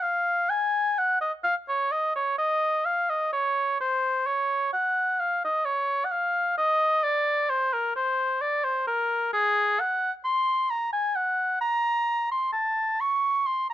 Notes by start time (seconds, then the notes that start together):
0.02 F5
0.50 G#5
0.98 F#5
1.21 D#5
1.44 F5
1.69 C#5
1.92 D#5
2.16 C#5
2.38 D#5
2.85 F5
3.10 D#5
3.33 C#5
3.80 C5
4.26 C#5
4.73 F#5
5.20 F5
5.44 D#5
5.65 C#5
6.05 F#5
6.11 F5
6.57 D#5
7.04 D5
7.50 C5
7.73 A#4
7.96 C5
8.41 D5
8.64 C5
8.87 A#4
9.33 G#4
9.80 F#5
10.25 C6
10.70 A#5
10.93 G#5
11.16 F#5
11.61 A#5
12.31 C6
12.53 A5
13.00 C#6
13.46 C6
13.70 A#5